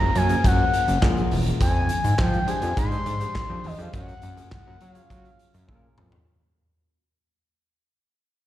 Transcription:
Already playing: C#3 F3 A#3 C#4 F4 G#4 A#4 A#5
0.01 F#1
0.15 F#2 G#5, closed hi-hat
0.29 F3 C#4 G#4 A#4, closed hi-hat
0.44 F#2 F#5, kick, closed hi-hat
0.73 closed hi-hat
0.88 F#1, closed hi-hat
1.02 A#1 C#4 F4 G#4 A#4, kick, snare, clap
1.17 closed hi-hat
1.31 E1, open hi-hat
1.46 closed hi-hat
1.59 F2 D3 F3 G#3 G#5, kick, closed hi-hat
1.89 closed hi-hat
2.04 G#2, closed hi-hat
2.18 F3 G5, kick, snare, clap
2.34 closed hi-hat
2.47 D4 G4 G#4 C5 G#5, closed hi-hat
2.62 F2, closed hi-hat
2.77 G#2 C6, kick, closed hi-hat
2.91 D4 G4 G#4 C5, closed hi-hat
3.06 G#2, closed hi-hat
3.20 D4 G4 G#4 C5, closed hi-hat
3.35 kick, snare, clap
3.49 F2 D4 G4 G#4 C5
3.64 E2 D#5, open hi-hat
3.78 F2 D4 G4 G#4 C5 F5, closed hi-hat
3.93 F#2 C#3 F#3 A#3 F#5, kick, closed hi-hat
4.09 closed hi-hat
4.22 F#2, closed hi-hat
4.37 C#4 F4 G#4 A#4, closed hi-hat
4.51 F#5, kick, snare, clap
4.67 F#2
4.81 F#3 F5, closed hi-hat
4.95 C#4 F4 G#4 C#5, closed hi-hat
5.10 F#3, kick, closed hi-hat
5.25 closed hi-hat
5.39 closed hi-hat
5.54 F#2, closed hi-hat
5.68 A#2 C#4 F4 G#4 A4, kick, high tom
5.75 A#4
5.98 F2, mid tom
6.12 floor tom

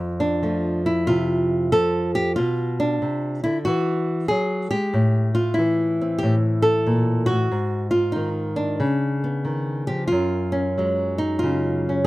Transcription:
Already playing: F2 C4
0.20 D4
0.43 F3 A3
0.86 E4
1.07 C3 F4
1.72 F3 A4
2.15 G4
2.36 B2 F4
2.80 D4
3.02 C3
3.44 D3 E4
3.65 E3 F#4
4.28 F#3 G#4
4.71 G#3 G4
4.94 A2
5.35 F4
5.54 E4
5.59 E3
6.01 C4
6.18 G4
6.23 A2
6.62 A4
6.87 A#2
7.26 A2 F#4
7.52 G#2
7.91 F4
8.12 D#3 D#4
8.56 D4
8.80 C#3
9.24 B3
9.45 D#3
9.87 F3 G4
10.08 F4
10.12 F#2
10.52 C#4
10.78 F#3 G#3
11.18 D#4
11.39 F4
11.43 C#3
11.89 C#4

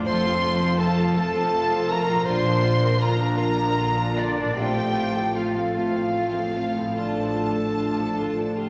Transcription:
Already playing: F2 F3
0.00 F4 C5
0.06 F1 F2 A3 F4 A4 C5 C6
0.26 F3 C4 F4 A4
0.44 A3 F4 A4
0.62 F3 C4 F4 A4
0.79 A3 F4 A4 A5
0.97 F3 C4 F4 A4
1.16 F1 F2 A3 F4 A4 A5
1.35 F3 C4 F4 A4
1.53 A3 F4 A4
1.71 F3 C4 F4 A4
1.88 A3 F4 A4 A#4 A#5
2.08 A#2 F3 C4 F4 A4
2.14 F3
2.19 F4
2.23 A#1 A#2 D3 A#3 D4 F4 C5 D5 C6
2.28 C6
2.43 F3 D4 A#4
2.62 D3 A#3 F4
2.79 F3 D4 A#4
2.99 D3 A#3 F4 A#4 A#5
3.19 F3 D4 A#4
3.36 A#1 A#2 D3 A#3 F4 A#4 A#5
3.57 F3 D4 A#4
3.76 D3 A#3 F4
3.95 F3 D4 A#4
4.15 D3 A#3 D4 F4 D5
4.36 A2 F3 D4 A#4
4.44 F3
4.49 F4
4.53 A2 A3 C4 F4 G4 C5
4.57 A1 C4 F4 G5
4.75 F3 A3 C4 A4
4.95 A3 C4 F4
5.14 F3 A3 C4 A4
5.34 A3 C4 F4 F5
5.54 F3 A3 C4 A4
5.74 A1 A2 A3 C4 F4 F5
5.94 F3 A3 C4 A4
6.14 A3 C4 F4
6.34 F3 A3 C4 A4
6.54 A3 C4 F4
6.76 A2 F3 A3 C4 A4
6.83 F3
6.88 F4
6.92 F4 A4 D5
6.96 A1 A2 D3 A3 D4 A5
7.16 F3 D4 A4
7.36 D3 A3 F4
7.57 F3 D4 A4
7.77 D3 A3 F4
7.96 F3 D4 A4
8.16 A1 A2 D3 A3 F4 A4
8.36 F3 D4 A4
8.56 D3 A3 F4 G4

